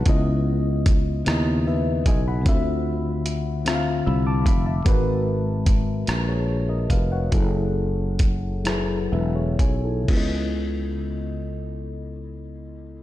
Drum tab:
CC |------|------|------|------|
HH |x-xx-x|x-xx-x|x-xx-x|x-xx-x|
SD |---r--|---r--|---r--|---r--|
BD |o-o--o|o----o|o-o--o|o-o--o|

CC |x-----|
HH |------|
SD |------|
BD |o-----|